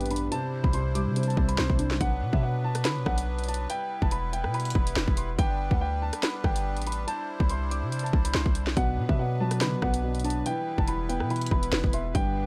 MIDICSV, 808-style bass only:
0, 0, Header, 1, 2, 480
1, 0, Start_track
1, 0, Tempo, 422535
1, 359, Time_signature, 4, 2, 24, 8
1, 14157, End_track
2, 0, Start_track
2, 0, Title_t, "808-style bass"
2, 0, Program_c, 0, 38
2, 5, Note_on_c, 0, 33, 99
2, 341, Note_off_c, 0, 33, 0
2, 726, Note_on_c, 0, 36, 109
2, 1205, Note_on_c, 0, 48, 99
2, 1222, Note_off_c, 0, 36, 0
2, 1541, Note_off_c, 0, 48, 0
2, 1558, Note_on_c, 0, 36, 106
2, 1789, Note_off_c, 0, 36, 0
2, 1798, Note_on_c, 0, 36, 107
2, 1921, Note_off_c, 0, 36, 0
2, 1927, Note_on_c, 0, 36, 109
2, 2166, Note_on_c, 0, 35, 98
2, 2183, Note_off_c, 0, 36, 0
2, 2273, Note_off_c, 0, 35, 0
2, 2279, Note_on_c, 0, 35, 109
2, 2520, Note_on_c, 0, 47, 101
2, 2537, Note_off_c, 0, 35, 0
2, 2640, Note_off_c, 0, 47, 0
2, 2647, Note_on_c, 0, 47, 114
2, 3240, Note_on_c, 0, 50, 103
2, 3257, Note_off_c, 0, 47, 0
2, 3369, Note_on_c, 0, 47, 106
2, 3386, Note_off_c, 0, 50, 0
2, 3471, Note_off_c, 0, 47, 0
2, 3478, Note_on_c, 0, 35, 105
2, 4170, Note_off_c, 0, 35, 0
2, 4566, Note_on_c, 0, 28, 110
2, 5046, Note_on_c, 0, 47, 100
2, 5063, Note_off_c, 0, 28, 0
2, 5381, Note_off_c, 0, 47, 0
2, 5398, Note_on_c, 0, 28, 110
2, 5629, Note_off_c, 0, 28, 0
2, 5637, Note_on_c, 0, 28, 107
2, 5760, Note_off_c, 0, 28, 0
2, 5767, Note_on_c, 0, 28, 104
2, 6105, Note_off_c, 0, 28, 0
2, 6118, Note_on_c, 0, 31, 113
2, 6471, Note_off_c, 0, 31, 0
2, 6486, Note_on_c, 0, 38, 105
2, 6947, Note_off_c, 0, 38, 0
2, 7318, Note_on_c, 0, 31, 107
2, 7687, Note_on_c, 0, 33, 96
2, 7704, Note_off_c, 0, 31, 0
2, 8022, Note_off_c, 0, 33, 0
2, 8407, Note_on_c, 0, 36, 111
2, 8887, Note_on_c, 0, 48, 97
2, 8904, Note_off_c, 0, 36, 0
2, 9222, Note_off_c, 0, 48, 0
2, 9239, Note_on_c, 0, 36, 107
2, 9469, Note_off_c, 0, 36, 0
2, 9482, Note_on_c, 0, 36, 104
2, 9602, Note_off_c, 0, 36, 0
2, 9607, Note_on_c, 0, 36, 109
2, 9847, Note_on_c, 0, 35, 98
2, 9864, Note_off_c, 0, 36, 0
2, 9954, Note_off_c, 0, 35, 0
2, 9959, Note_on_c, 0, 35, 107
2, 10200, Note_on_c, 0, 47, 102
2, 10217, Note_off_c, 0, 35, 0
2, 10320, Note_off_c, 0, 47, 0
2, 10327, Note_on_c, 0, 47, 108
2, 10919, Note_on_c, 0, 50, 103
2, 10936, Note_off_c, 0, 47, 0
2, 11047, Note_on_c, 0, 47, 102
2, 11064, Note_off_c, 0, 50, 0
2, 11154, Note_off_c, 0, 47, 0
2, 11159, Note_on_c, 0, 35, 106
2, 11850, Note_off_c, 0, 35, 0
2, 12247, Note_on_c, 0, 28, 110
2, 12726, Note_on_c, 0, 47, 100
2, 12743, Note_off_c, 0, 28, 0
2, 13061, Note_off_c, 0, 47, 0
2, 13079, Note_on_c, 0, 28, 105
2, 13309, Note_off_c, 0, 28, 0
2, 13319, Note_on_c, 0, 28, 109
2, 13441, Note_off_c, 0, 28, 0
2, 13447, Note_on_c, 0, 28, 103
2, 13785, Note_off_c, 0, 28, 0
2, 13800, Note_on_c, 0, 31, 111
2, 14152, Note_off_c, 0, 31, 0
2, 14157, End_track
0, 0, End_of_file